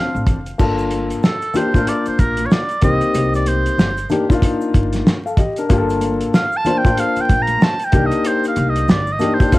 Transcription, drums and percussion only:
0.16 shaker
0.27 kick, closed hi-hat, low conga, shaker
0.46 closed hi-hat, shaker
0.59 kick, crash, shaker
0.78 shaker
0.91 closed hi-hat, high conga, shaker
1.10 closed hi-hat, shaker
1.23 snare, shaker
1.42 closed hi-hat, shaker
1.54 closed hi-hat, high conga, low conga, shaker
1.74 kick, closed hi-hat, shaker
1.87 closed hi-hat, shaker
2.06 closed hi-hat, shaker
2.19 kick, closed hi-hat, shaker
2.37 closed hi-hat, high conga, shaker
2.51 snare, shaker
2.69 closed hi-hat, shaker
2.82 kick, closed hi-hat, low conga, shaker
3.01 closed hi-hat, shaker
3.14 closed hi-hat, shaker
3.34 closed hi-hat, shaker
3.46 closed hi-hat, high conga, shaker
3.66 closed hi-hat, shaker
3.79 snare, shaker
3.97 closed hi-hat, shaker
4.10 closed hi-hat, high conga, low conga, shaker
4.30 kick, closed hi-hat, shaker
4.42 kick, closed hi-hat, shaker
4.61 shaker
4.74 kick, closed hi-hat, shaker
4.93 snare, closed hi-hat, high conga, shaker
5.07 snare, shaker
5.27 shaker
5.37 kick, closed hi-hat, low conga, shaker
5.56 closed hi-hat, shaker
5.70 kick, closed hi-hat, shaker
5.89 closed hi-hat, shaker
6.01 closed hi-hat, high conga, shaker
6.21 closed hi-hat, shaker
6.34 snare, shaker
6.52 shaker
6.65 closed hi-hat, high conga, low conga, shaker
6.85 kick, closed hi-hat, shaker
6.97 closed hi-hat, shaker
7.16 closed hi-hat, shaker
7.29 kick, closed hi-hat, shaker
7.47 closed hi-hat, high conga, shaker
7.61 snare, shaker
7.79 closed hi-hat, shaker
7.92 kick, closed hi-hat, low conga, shaker
8.11 closed hi-hat, shaker
8.24 closed hi-hat, shaker
8.44 closed hi-hat, shaker
8.56 closed hi-hat, high conga, shaker
8.76 closed hi-hat, shaker
8.88 snare, high conga, low conga, shaker
9.07 shaker
9.19 closed hi-hat, high conga, low conga, shaker
9.40 kick, closed hi-hat, shaker
9.52 kick, closed hi-hat, shaker

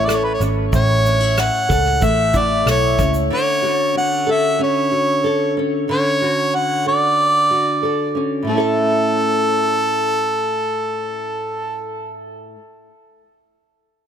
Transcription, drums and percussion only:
0.09 cross-stick, shaker
0.41 shaker
0.73 kick, shaker
1.06 shaker
1.38 cross-stick, shaker
1.70 kick, shaker
1.86 cross-stick
2.02 kick, shaker
2.34 kick, shaker
2.67 cross-stick, shaker
2.99 kick, shaker
3.14 shaker

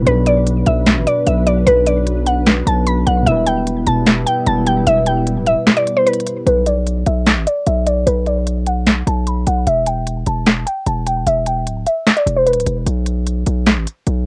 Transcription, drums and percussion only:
0.07 closed hi-hat
0.26 closed hi-hat
0.47 closed hi-hat
0.66 closed hi-hat
0.86 finger snap, snare, closed hi-hat
1.07 closed hi-hat
1.27 closed hi-hat
1.47 closed hi-hat
1.67 closed hi-hat
1.87 closed hi-hat
2.07 closed hi-hat
2.27 closed hi-hat
2.47 finger snap, snare, closed hi-hat
2.67 closed hi-hat
2.87 closed hi-hat
3.07 closed hi-hat
3.27 closed hi-hat
3.46 closed hi-hat
3.67 closed hi-hat
3.86 closed hi-hat
4.06 finger snap, snare, closed hi-hat
4.27 closed hi-hat
4.47 closed hi-hat
4.67 closed hi-hat
4.87 closed hi-hat
5.06 closed hi-hat
5.27 closed hi-hat
5.46 closed hi-hat
5.67 finger snap, snare, closed hi-hat
5.77 closed hi-hat
5.87 closed hi-hat
6.07 closed hi-hat
6.13 closed hi-hat
6.20 closed hi-hat
6.27 closed hi-hat
6.47 closed hi-hat
6.66 closed hi-hat
6.87 closed hi-hat
7.06 closed hi-hat
7.27 finger snap, snare, closed hi-hat
7.47 closed hi-hat
7.67 closed hi-hat
7.87 closed hi-hat
8.07 closed hi-hat
8.26 closed hi-hat
8.47 closed hi-hat
8.66 closed hi-hat
8.86 finger snap, snare, closed hi-hat
9.07 closed hi-hat
9.27 closed hi-hat
9.47 closed hi-hat
9.67 closed hi-hat
9.86 closed hi-hat
10.07 closed hi-hat
10.26 closed hi-hat
10.46 finger snap, snare, closed hi-hat
10.67 closed hi-hat
10.87 closed hi-hat
11.07 closed hi-hat
11.27 closed hi-hat
11.46 closed hi-hat
11.67 closed hi-hat
11.86 closed hi-hat
12.07 finger snap, snare, closed hi-hat
12.17 closed hi-hat
12.27 closed hi-hat
12.47 closed hi-hat
12.53 closed hi-hat
12.60 closed hi-hat
12.67 closed hi-hat
12.87 closed hi-hat
13.06 closed hi-hat
13.27 closed hi-hat
13.46 closed hi-hat
13.66 finger snap, snare, closed hi-hat
13.87 closed hi-hat
14.07 closed hi-hat

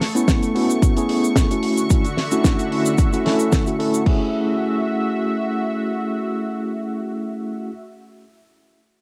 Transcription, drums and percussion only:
0.01 snare, open hi-hat
0.15 closed hi-hat, cabasa
0.28 kick, snare, closed hi-hat, cabasa
0.43 closed hi-hat, cabasa
0.56 open hi-hat
0.69 closed hi-hat, cabasa
0.82 kick, closed hi-hat, cabasa
0.97 closed hi-hat, cabasa
1.09 open hi-hat
1.24 closed hi-hat, cabasa
1.36 kick, snare, closed hi-hat, cabasa
1.51 closed hi-hat, cabasa
1.63 open hi-hat
1.77 closed hi-hat, cabasa
1.90 kick, closed hi-hat, cabasa
2.04 closed hi-hat, cabasa
2.17 snare, open hi-hat
2.31 closed hi-hat, cabasa
2.44 kick, snare, closed hi-hat, cabasa
2.59 closed hi-hat, cabasa
2.72 open hi-hat
2.86 closed hi-hat, cabasa
2.98 kick, closed hi-hat, cabasa
3.13 closed hi-hat, cabasa
3.26 snare, open hi-hat
3.39 closed hi-hat, cabasa
3.52 kick, snare, closed hi-hat, cabasa
3.67 closed hi-hat, cabasa
3.80 open hi-hat
3.94 closed hi-hat, cabasa
4.06 kick, crash

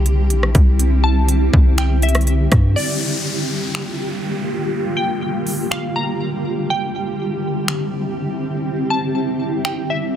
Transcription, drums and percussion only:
0.06 closed hi-hat
0.30 closed hi-hat
0.43 cross-stick
0.55 kick, closed hi-hat
0.79 closed hi-hat
1.28 closed hi-hat
1.53 kick
1.78 finger snap, closed hi-hat
2.02 closed hi-hat
2.09 closed hi-hat
2.15 cross-stick, closed hi-hat
2.21 closed hi-hat
2.27 closed hi-hat
2.52 kick, cross-stick, closed hi-hat
3.75 finger snap
5.47 open hi-hat
5.72 finger snap
7.68 finger snap
9.65 finger snap

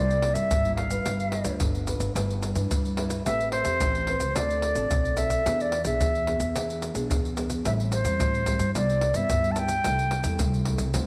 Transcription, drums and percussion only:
0.10 pandeiro, shaker
0.22 pandeiro
0.35 pandeiro, shaker
0.51 pandeiro, shaker, surdo
0.65 pandeiro, shaker
0.77 pandeiro
0.90 pandeiro, shaker
1.06 pandeiro, shaker, surdo
1.20 pandeiro, shaker
1.32 pandeiro
1.45 pandeiro, shaker
1.60 pandeiro, shaker, surdo
1.75 pandeiro, shaker
1.87 pandeiro, shaker, surdo
2.00 pandeiro, shaker
2.16 pandeiro, shaker, surdo
2.30 pandeiro, shaker
2.43 pandeiro, shaker
2.55 pandeiro, shaker
2.71 pandeiro, shaker, surdo
2.85 pandeiro, shaker
2.97 pandeiro
3.10 pandeiro, shaker
3.26 pandeiro, shaker, surdo
3.40 pandeiro, shaker
3.52 pandeiro
3.65 pandeiro, shaker
3.80 pandeiro, shaker, surdo
3.95 pandeiro, shaker
4.07 pandeiro
4.20 pandeiro, shaker
4.36 pandeiro, shaker, surdo
4.50 pandeiro, shaker
4.62 pandeiro
4.75 pandeiro, shaker
4.91 pandeiro, shaker, surdo
5.05 pandeiro, shaker
5.17 pandeiro, shaker
5.30 pandeiro, shaker
5.46 pandeiro, shaker, surdo
5.60 pandeiro, shaker
5.72 pandeiro
5.85 pandeiro, shaker
6.01 pandeiro, shaker, surdo
6.15 pandeiro, shaker
6.27 pandeiro
6.40 pandeiro, shaker
6.56 pandeiro, shaker, surdo
6.70 pandeiro, shaker
6.82 pandeiro, shaker
6.95 pandeiro, shaker
7.11 pandeiro, shaker, surdo
7.25 pandeiro, shaker
7.37 pandeiro, shaker
7.50 pandeiro, shaker
7.65 pandeiro, shaker, surdo
7.80 pandeiro, shaker
7.92 pandeiro, shaker
8.05 pandeiro, shaker
8.20 pandeiro, shaker, surdo
8.34 pandeiro, shaker
8.46 pandeiro, shaker, surdo
8.59 pandeiro, shaker
8.75 pandeiro, shaker, surdo
8.89 pandeiro, shaker
9.01 pandeiro
9.14 pandeiro, shaker
9.30 pandeiro, shaker, surdo
9.44 pandeiro, shaker
9.56 pandeiro, shaker
9.68 pandeiro, shaker
9.84 pandeiro, shaker, surdo
9.99 pandeiro, shaker
10.11 pandeiro
10.24 pandeiro, shaker
10.39 pandeiro, shaker, surdo
10.54 pandeiro, shaker
10.65 pandeiro
10.78 pandeiro, shaker
10.94 pandeiro, shaker, surdo

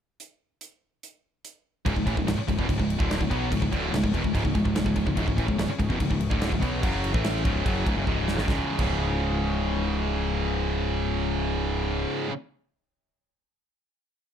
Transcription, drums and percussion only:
0.20 closed hi-hat
0.61 closed hi-hat
1.03 closed hi-hat
1.45 closed hi-hat
1.86 kick, crash
1.96 kick
2.07 kick, crash
2.17 kick
2.28 snare, crash
2.48 kick, crash
2.59 kick
2.69 kick, crash
2.79 kick
2.90 crash
3.00 kick
3.11 snare, crash
3.21 kick
3.31 kick, crash
3.52 kick, crash
3.62 kick
3.73 kick, crash
3.94 snare, crash
4.04 kick
4.14 kick, crash
4.24 kick
4.35 kick, crash
4.45 kick
4.55 kick, crash
4.65 kick
4.76 snare, crash
4.86 kick
4.96 kick, crash
5.07 kick
5.17 kick, crash
5.28 kick
5.38 kick, crash
5.48 kick
5.59 snare, crash
5.80 kick, crash
5.90 kick
6.00 kick, crash
6.11 kick
6.20 crash
6.31 kick
6.41 snare, crash
6.52 kick
6.62 kick, crash
6.83 kick, crash
7.04 crash
7.14 kick
7.24 snare, crash
7.45 kick, crash
7.66 kick, crash
7.86 kick, crash
8.07 kick
8.28 snare
8.38 snare
8.48 kick, snare
8.79 kick, crash

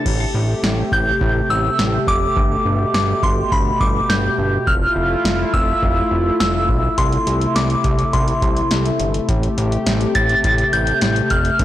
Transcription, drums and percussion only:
0.06 kick, crash
0.64 snare
0.92 kick
1.21 kick
1.79 snare
2.07 kick
2.37 kick
2.94 snare
3.23 kick
3.52 kick
3.81 kick
4.10 snare
4.67 kick
5.25 snare
5.54 kick
5.83 kick
6.40 snare
6.69 kick
6.98 kick, closed hi-hat
7.13 closed hi-hat
7.27 closed hi-hat
7.41 closed hi-hat
7.56 snare, closed hi-hat
7.70 closed hi-hat
7.84 kick, closed hi-hat
7.99 closed hi-hat
8.13 kick, closed hi-hat
8.28 closed hi-hat
8.42 kick, closed hi-hat
8.57 closed hi-hat
8.71 snare, closed hi-hat
8.86 closed hi-hat
9.00 closed hi-hat
9.14 closed hi-hat
9.29 kick, closed hi-hat
9.43 closed hi-hat
9.58 closed hi-hat
9.72 closed hi-hat
9.86 snare, closed hi-hat
10.01 closed hi-hat
10.15 kick, closed hi-hat
10.29 closed hi-hat
10.44 kick, closed hi-hat
10.58 closed hi-hat
10.73 closed hi-hat
10.87 closed hi-hat
11.01 snare, closed hi-hat
11.16 closed hi-hat
11.30 kick, closed hi-hat
11.45 closed hi-hat
11.59 kick, closed hi-hat

